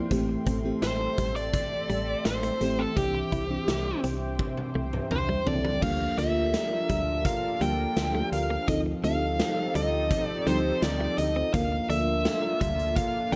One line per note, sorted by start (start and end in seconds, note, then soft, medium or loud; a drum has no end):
0.00 0.13 F3 medium
0.00 0.13 A#3 medium
0.00 0.11 C4 medium
0.00 0.13 E4 medium
0.00 2.93 G5 medium
0.00 2.93 C6 medium
0.11 0.37 A1 loud
0.11 0.61 E3 medium
0.11 0.62 A3 medium
0.11 0.22 A3 medium
0.11 0.62 C4 medium
0.11 0.62 G4 medium
0.11 2.94 A4 medium
0.11 5.78 E5 medium
0.11 kick loud
0.11 closed hi-hat medium
0.29 muted clean electric guitar stroke soft
0.47 0.72 A1 loud
0.47 0.58 C4 medium
0.47 kick medium
0.47 closed hi-hat medium
0.64 1.99 E3 medium
0.64 1.99 A3 medium
0.64 2.00 C4 medium
0.64 2.00 G4 medium
0.82 1.08 A1 loud
0.82 1.36 C5 medium
0.82 snare medium
0.82 closed hi-hat medium
1.18 1.57 A1 medium
1.18 1.29 G3 medium
1.18 kick medium
1.18 closed hi-hat medium
1.36 2.26 D5 loud
1.36 closed hi-hat soft
1.54 kick loud
1.54 closed hi-hat medium
1.89 2.15 A1 medium
1.89 2.01 G3 medium
1.89 closed hi-hat medium
2.25 2.51 A1 loud
2.25 2.81 C5 medium
2.25 snare loud
2.25 closed hi-hat medium
2.43 2.54 A3 medium
2.43 closed hi-hat medium
2.61 2.87 A1 medium
2.61 2.95 E3 medium
2.61 2.95 A3 medium
2.61 2.95 C4 medium
2.61 2.95 G4 medium
2.61 muted clean electric guitar stroke soft
2.61 closed hi-hat medium
2.79 2.90 C4 medium
2.79 2.97 A4 medium
2.96 3.22 C2 loud
2.96 3.47 E3 medium
2.96 3.47 C4 medium
2.96 3.08 C4 medium
2.96 3.47 D4 medium
2.96 4.00 G4 medium
2.96 3.48 G4 medium
2.96 5.80 C5 medium
2.96 5.80 G5 medium
2.96 5.79 D6 medium
2.96 kick loud
2.96 closed hi-hat medium
3.15 muted clean electric guitar stroke soft
3.32 3.58 C2 loud
3.32 3.44 E4 medium
3.32 kick medium
3.32 closed hi-hat medium
3.50 4.85 E3 medium
3.50 4.85 C4 medium
3.50 4.85 D4 medium
3.50 4.85 G4 medium
3.68 3.94 C2 medium
3.68 snare loud
3.68 closed hi-hat medium
4.04 4.42 C2 loud
4.04 4.15 C4 medium
4.04 closed hi-hat medium
4.39 kick medium
4.39 high tom soft
4.57 high tom medium
4.75 5.01 C2 medium
4.75 4.86 A3 medium
4.93 mid tom medium
5.11 5.37 C2 medium
5.11 5.45 C5 medium
5.11 mid tom medium
5.29 5.40 G3 medium
5.46 5.72 C2 medium
5.46 5.80 E3 medium
5.46 5.80 C4 medium
5.46 5.81 D4 medium
5.46 5.81 A4 medium
5.46 5.83 D5 medium
5.46 muted clean electric guitar stroke soft
5.46 floor tom medium
5.65 5.76 G3 medium
5.65 floor tom medium
5.82 6.08 D2 loud
5.82 6.16 F3 medium
5.82 11.50 F3 medium
5.82 5.94 G3 medium
5.82 6.16 A#3 medium
5.82 8.65 D4 medium
5.82 6.16 D4 medium
5.82 8.65 F4 medium
5.82 6.16 G4 medium
5.82 8.65 A4 medium
5.82 8.65 A#4 medium
5.82 6.16 F5 loud
5.82 kick loud
5.82 crash medium
6.00 muted clean electric guitar stroke soft
6.18 6.57 D2 loud
6.18 7.53 F3 medium
6.18 7.53 A#3 medium
6.18 6.29 A#3 medium
6.18 7.53 D4 medium
6.18 7.53 F4 medium
6.18 6.89 E5 medium
6.18 closed hi-hat medium
6.54 snare loud
6.54 closed hi-hat medium
6.89 7.28 D2 loud
6.89 7.01 G3 medium
6.89 7.23 E5 medium
6.89 kick medium
6.89 closed hi-hat medium
7.25 7.62 F5 loud
7.25 kick medium
7.25 closed hi-hat medium
7.60 7.87 D2 loud
7.60 8.62 F3 medium
7.60 7.72 G3 medium
7.60 8.62 A#3 medium
7.60 8.62 D4 medium
7.60 8.62 G4 medium
7.60 8.29 G5 loud
7.60 closed hi-hat medium
7.97 8.22 D2 medium
7.97 snare loud
7.97 closed hi-hat medium
8.15 8.26 A3 medium
8.32 8.58 D2 medium
8.32 8.68 F5 loud
8.32 muted clean electric guitar stroke soft
8.32 closed hi-hat medium
8.50 8.61 A#3 medium
8.67 8.94 D2 loud
8.67 9.01 F3 medium
8.67 8.79 F3 medium
8.67 9.02 C4 medium
8.67 11.51 C4 medium
8.67 9.02 D#4 medium
8.67 11.51 D#4 medium
8.67 11.51 G4 medium
8.67 11.51 A4 medium
8.67 9.02 A4 medium
8.67 8.78 D#5 loud
8.67 kick loud
8.67 closed hi-hat medium
8.86 muted clean electric guitar stroke soft
9.03 9.42 D2 loud
9.03 10.38 F3 medium
9.03 9.15 A3 medium
9.03 10.38 C4 medium
9.03 10.39 D#4 medium
9.03 10.39 A4 medium
9.03 9.75 F5 medium
9.03 closed hi-hat medium
9.40 snare medium
9.40 closed hi-hat medium
9.75 10.14 D2 loud
9.75 9.86 G3 medium
9.75 10.27 D#5 medium
9.75 closed hi-hat medium
10.11 kick loud
10.11 closed hi-hat medium
10.27 10.49 D5 medium
10.46 10.72 D2 medium
10.46 11.47 F3 medium
10.46 10.58 G3 medium
10.46 11.48 C4 medium
10.46 11.48 D#4 medium
10.46 11.48 G4 medium
10.46 10.80 C5 medium
10.46 closed hi-hat medium
10.82 11.08 D2 loud
10.82 11.18 D5 medium
10.82 snare loud
10.82 closed hi-hat medium
11.00 11.12 A3 medium
11.18 11.44 D2 loud
11.18 11.51 D#5 medium
11.18 muted clean electric guitar stroke soft
11.18 closed hi-hat medium
11.36 11.47 C4 medium
11.54 11.80 D2 loud
11.54 11.87 F3 medium
11.54 13.36 A#3 medium
11.54 11.88 A#3 medium
11.54 11.65 A#3 medium
11.54 13.36 D4 medium
11.54 11.88 D4 medium
11.54 13.36 F4 medium
11.54 11.88 A#4 medium
11.54 11.87 F5 loud
11.54 kick loud
11.54 closed hi-hat medium
11.72 muted clean electric guitar stroke soft
11.89 12.28 D2 loud
11.89 13.24 F3 medium
11.89 13.24 A#3 medium
11.89 12.01 D4 medium
11.89 13.24 D4 medium
11.89 13.25 A4 medium
11.89 12.60 E5 medium
11.89 closed hi-hat medium
12.25 snare loud
12.25 closed hi-hat medium
12.61 13.00 D2 medium
12.61 12.72 G3 medium
12.61 12.96 E5 medium
12.61 kick medium
12.61 closed hi-hat medium
12.79 closed hi-hat soft
12.96 13.34 F5 medium
12.96 kick loud
12.96 closed hi-hat medium
13.32 13.36 D2 loud
13.32 13.36 F3 medium
13.32 13.36 G3 medium
13.32 13.36 A#3 medium
13.32 13.36 G5 loud
13.32 closed hi-hat medium